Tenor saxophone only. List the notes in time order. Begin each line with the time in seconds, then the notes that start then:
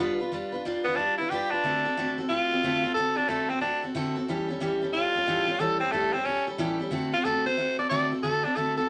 Already playing: B3
0.84 B3
0.96 D4
1.17 E4
1.30 G4
1.50 D4
2.29 F4
2.94 A4
3.16 D4
3.29 A3
3.50 C4
3.61 D4
4.93 F4
5.60 A4
5.80 C4
5.92 A3
6.13 C4
6.25 C#4
7.14 F4
7.24 A4
7.46 C5
7.79 D5
7.90 D5
8.23 A4
8.44 D4
8.56 A4
8.77 A4